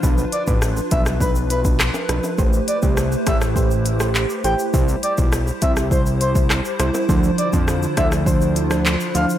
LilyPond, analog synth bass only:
\new Staff \with { instrumentName = "Analog synth bass" } { \clef bass \time 4/4 \key a \minor \tempo 4 = 102 b,,8 r16 a,,8. b,,4.~ b,,16 r16 b,,16 r16 | a,,8 r16 c,8. a,,4.~ a,,16 r16 a,,16 r16 | c,8 r16 b,,8. c,4.~ c,16 r16 c,16 r16 | d,8 r16 f,8. d,4.~ d,16 r16 d,16 r16 | }